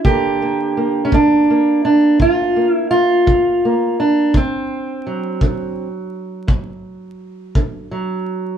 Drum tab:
BD |o--o--o--o--|o--o--o--o--|